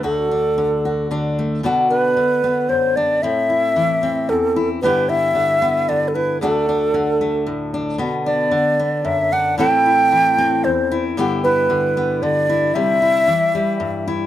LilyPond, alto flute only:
\new Staff \with { instrumentName = "Alto flute" } { \time 3/4 \key d \mixolydian \tempo 4 = 113 a'2 r4 | r8 b'4. c''8 d''8 | e''2 a'8. r16 | b'8 e''4. d''16. a'32 b'8 |
a'2 r4 | r8 d''4. e''8 fis''8 | g''2 c''8. r16 | r8 b'4. d''4 |
e''2~ e''8 r8 | }